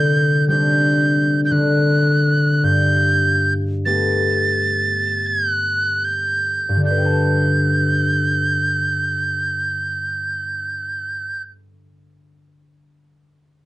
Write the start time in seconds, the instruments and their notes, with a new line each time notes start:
Already playing: harp D3 C4 E4, tin whistle G6
0.48 harp G3 C4, tin whistle G6
0.52 harp D4
1.45 tin whistle G6
1.51 harp D3, tin whistle F#6
2.63 harp G2, tin whistle G6
3.85 harp A3 B3 G4, tin whistle A6
5.26 tin whistle F#6
6.05 tin whistle G6
6.69 harp G2
6.76 harp D3
6.83 harp D4, tin whistle G6
6.91 harp B4
6.98 harp G5
7.05 harp A5